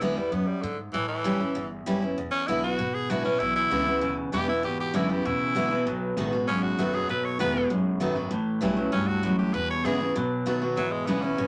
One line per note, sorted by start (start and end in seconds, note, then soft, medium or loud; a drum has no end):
0.00 0.29 E2 medium
0.00 0.31 E2 loud
0.00 0.16 D3 medium
0.00 0.16 G#3 medium
0.00 0.17 B3 medium
0.00 0.18 B3 medium
0.00 0.15 E4 loud
0.16 0.33 G3 medium
0.16 0.32 B3 medium
0.16 0.32 E4 medium
0.32 0.62 F#2 medium
0.32 0.48 B3 medium
0.47 0.64 G3 medium
0.62 0.93 G#2 medium
0.62 0.78 D3 medium
0.93 1.52 A2 medium
0.93 1.24 A2 medium
0.93 1.07 E3 loud
1.08 1.69 E3 loud
1.24 1.39 A1 medium
1.24 1.39 E3 medium
1.24 1.40 G3 medium
1.24 1.40 C#4 loud
1.24 1.39 E4 medium
1.40 1.56 C#4 soft
1.40 1.55 E4 medium
1.40 muted upright bass stroke soft
1.55 1.85 G1 medium
1.55 2.14 E2 medium
1.86 2.16 F#1 medium
1.86 2.01 E3 loud
1.86 2.01 G3 loud
1.86 2.02 C#4 medium
1.86 2.01 E4 loud
2.02 2.18 C#4 soft
2.02 2.17 E4 medium
2.18 2.32 E1 medium
2.18 2.76 E2 medium
2.31 2.49 C#4 loud
2.48 2.78 B1 loud
2.48 2.63 D3 loud
2.48 2.63 G#3 loud
2.48 2.63 B3 loud
2.48 2.63 E4 loud
2.64 2.79 B3 medium
2.64 2.79 E4 medium
2.64 2.95 F#4 loud
2.79 3.09 G#1 medium
2.79 3.37 B2 medium
2.94 3.11 G#4 medium
3.09 3.39 A1 medium
3.09 3.24 D3 medium
3.09 3.25 G#3 loud
3.09 3.25 B3 medium
3.09 3.23 E4 loud
3.09 3.24 F#4 medium
3.25 3.40 B3 medium
3.25 3.41 C#4 loud
3.25 3.40 E4 medium
3.39 3.70 B1 medium
3.39 3.68 E2 medium
3.39 3.99 E2 medium
3.39 3.68 B2 medium
3.39 3.55 E4 loud
3.56 4.15 E4 loud
3.70 4.01 C#2 loud
3.70 3.85 E2 medium
3.70 3.85 C#3 loud
3.70 3.86 D3 medium
3.70 3.86 G#3 medium
3.70 3.86 B3 loud
3.70 3.85 E4 loud
3.86 4.00 E2 medium
3.86 4.00 C#3 medium
3.86 4.02 B3 medium
3.86 4.01 E4 medium
4.01 4.32 D2 medium
4.01 4.29 E2 medium
4.01 4.60 B2 medium
4.01 4.29 C#3 medium
4.32 4.46 E2 medium
4.32 4.63 E2 loud
4.32 4.47 B2 loud
4.32 4.47 D3 medium
4.32 4.48 G#3 medium
4.32 4.48 B3 medium
4.32 4.47 E4 loud
4.32 4.48 G4 loud
4.48 4.62 E2 medium
4.48 4.62 B2 medium
4.48 4.64 B3 medium
4.48 4.63 E4 medium
4.63 5.22 E2 medium
4.63 4.91 E2 medium
4.63 4.93 G#2 medium
4.63 4.91 B2 medium
4.63 4.79 G4 loud
4.80 4.97 G4 loud
4.94 5.08 E2 medium
4.94 5.24 F#2 loud
4.94 5.08 C#3 loud
4.94 5.09 D3 loud
4.94 5.09 G#3 medium
4.94 5.09 B3 loud
4.94 5.08 E4 loud
4.94 5.12 E4 medium
5.09 5.24 E2 medium
5.09 5.24 C#3 medium
5.09 5.25 B3 medium
5.09 5.24 E4 medium
5.09 5.27 G4 loud
5.25 5.39 E2 medium
5.25 5.53 E2 medium
5.25 5.84 B2 medium
5.25 5.53 C#3 medium
5.25 5.85 E4 loud
5.55 5.70 C#2 medium
5.55 5.69 E2 medium
5.55 5.70 B2 medium
5.55 5.70 D3 medium
5.55 5.70 G#3 medium
5.55 5.71 B3 loud
5.55 5.70 E4 loud
5.71 5.85 E2 medium
5.71 5.85 B2 medium
5.71 5.86 B3 medium
5.71 5.86 E4 medium
5.71 muted upright bass stroke soft
5.86 6.16 B1 medium
5.86 6.14 B2 medium
5.86 6.45 B2 medium
5.86 6.14 F#3 medium
6.17 6.47 A1 loud
6.17 6.31 B2 medium
6.17 6.32 D#3 medium
6.17 6.31 G#3 medium
6.17 6.32 A3 loud
6.17 6.32 B3 loud
6.17 6.31 F#4 loud
6.32 6.46 B2 medium
6.32 6.46 G#3 medium
6.32 6.48 B3 medium
6.32 6.47 F#4 medium
6.47 6.78 G#1 medium
6.47 7.07 F#2 medium
6.47 6.75 B2 medium
6.47 6.75 G#3 loud
6.47 6.64 C#4 loud
6.63 6.96 F#4 medium
6.78 7.08 F#1 medium
6.78 6.92 B2 medium
6.78 6.93 D#3 medium
6.78 6.92 F#3 medium
6.78 6.93 A3 medium
6.78 6.94 B3 medium
6.78 6.92 F#4 loud
6.93 7.07 B2 medium
6.93 7.08 F#3 medium
6.93 7.09 B3 medium
6.93 7.08 F#4 medium
6.93 7.09 G#4 loud
7.08 7.39 F#1 medium
7.08 7.37 B2 medium
7.08 7.68 B2 medium
7.08 7.37 F#3 medium
7.08 7.26 B4 loud
7.24 7.40 C#5 loud
7.39 7.70 E1 medium
7.39 7.54 B2 medium
7.39 7.54 D#3 loud
7.39 7.54 G#3 loud
7.39 7.55 A3 medium
7.39 7.55 B3 loud
7.39 7.54 F#4 loud
7.39 7.70 B4 medium
7.55 7.69 B2 medium
7.55 7.69 G#3 medium
7.55 7.71 B3 medium
7.55 7.70 F#4 medium
7.70 8.00 F#1 medium
7.70 8.29 F#2 medium
7.70 7.98 B2 medium
7.70 7.98 G#3 medium
8.00 8.31 G#1 medium
8.00 8.15 B2 medium
8.00 8.16 D#3 medium
8.00 8.15 F#3 loud
8.00 8.16 A3 loud
8.00 8.16 B3 loud
8.00 8.14 F#4 loud
8.15 8.30 B2 medium
8.15 8.31 F#3 medium
8.15 8.32 B3 soft
8.15 8.31 F#4 medium
8.31 8.62 A1 medium
8.31 8.90 A2 medium
8.31 8.59 A2 medium
8.31 8.60 E3 medium
8.61 8.92 B1 loud
8.61 8.76 A2 loud
8.61 8.76 E3 loud
8.61 8.76 F#3 medium
8.61 8.77 G3 loud
8.61 8.77 C#4 medium
8.61 8.76 E4 loud
8.77 8.91 A2 medium
8.77 8.92 F#3 medium
8.77 8.93 C#4 soft
8.77 8.92 E4 medium
8.92 9.23 C#2 medium
8.92 9.22 G2 medium
8.92 9.20 A2 medium
8.92 9.21 F#3 medium
8.92 9.09 C#4 loud
9.07 9.38 F#4 loud
9.23 9.54 D2 medium
9.23 9.53 F#2 loud
9.23 9.38 A2 medium
9.23 9.38 E3 medium
9.39 9.53 A2 medium
9.39 9.53 E3 medium
9.39 9.56 G4 medium
9.54 10.12 E2 loud
9.54 9.82 E2 medium
9.54 9.84 E2 medium
9.54 9.82 B2 medium
9.54 9.69 B4 loud
9.70 9.87 C#5 loud
9.85 9.99 E2 loud
9.85 10.15 G#2 loud
9.85 9.99 C#3 medium
9.85 10.00 D3 medium
9.85 10.00 G#3 loud
9.85 10.00 B3 medium
9.85 9.99 E4 loud
9.85 10.15 G#4 medium
10.00 10.14 E2 medium
10.00 10.15 C#3 medium
10.00 10.16 B3 soft
10.00 10.15 E4 medium
10.16 10.74 B2 loud
10.16 10.44 B2 medium
10.16 10.46 B2 medium
10.16 10.44 F#3 medium
10.46 10.61 B2 medium
10.46 10.61 D#3 medium
10.46 10.77 D#3 loud
10.46 10.61 F#3 medium
10.46 10.61 A3 medium
10.46 10.61 B3 loud
10.46 10.60 F#4 loud
10.62 10.76 B2 medium
10.62 10.76 F#3 medium
10.62 10.77 B3 medium
10.62 10.77 F#4 medium
10.77 11.36 E2 medium
10.77 11.05 E2 medium
10.77 11.07 G#2 medium
10.77 11.05 B2 medium
10.77 10.93 F#3 loud
10.92 11.08 G#3 medium
11.06 11.38 B1 loud
11.06 11.22 E2 medium
11.06 11.22 C#3 loud
11.06 11.22 D3 medium
11.06 11.22 G#3 loud
11.06 11.23 B3 medium
11.06 11.23 B3 loud
11.06 11.21 E4 loud
11.22 11.37 E2 medium
11.22 11.37 C#3 medium
11.22 11.38 B3 soft
11.22 11.47 C#4 medium
11.22 11.38 E4 medium
11.38 11.47 G#1 medium
11.38 11.47 E2 medium
11.38 11.47 B2 loud
11.38 11.47 C#3 medium